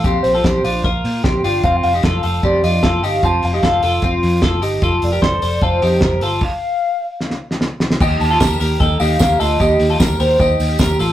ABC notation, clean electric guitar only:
X:1
M:4/4
L:1/16
Q:1/4=151
K:Fmix
V:1 name="Clean electric guitar"
[CG]3 [FA] [CG]2 [DF]2 [FB]4 [CG]2 [DF]2 | [CF]3 [EG] [FA]2 [FA]2 [CG]2 [DF]2 [FA]2 [EG]2 | [CF]3 [EG] [FA]2 [FA]2 [CF]4 [FA]2 [EG]2 | [FA]3 [GB] [Ac]2 [Ac]2 [FA]2 [EG]2 [GB]2 [FA]2 |
z16 | [EG]3 [FA] [GB]2 [GB]2 [EA]2 [EG]2 [GB]2 [FA]2 | [EG]3 [FA] [GB]2 [GB]2 [EG]4 [GB]2 [FA]2 |]